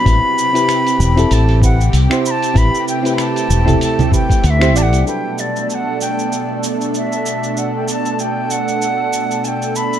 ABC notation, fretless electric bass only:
X:1
M:4/4
L:1/16
Q:"Swing 16ths" 1/4=96
K:G
V:1 name="Fretless electric bass" clef=bass
A,,, z4 z E,,, z A,,,4 C,, z3 | A,,, z4 z E,,, z4 z D,,2 A,,, C,, | z16 | z16 |]